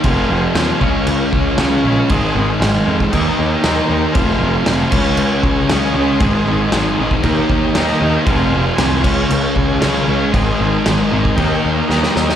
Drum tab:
CC |x---x---x---x---|x---x---x---x---|x---x-x-x---x---|x---x---x---x---|
SD |----o-------o---|----o-------o---|----o-------o---|----o-------o---|
BD |o-----o---o-----|o------oo-------|o-----o---o-----|o------oo-o-----|

CC |x---x-x-x---x---|x---x---x-------|
SD |----o-------o---|----o-------oooo|
BD |o-----o---o-----|o------oo-------|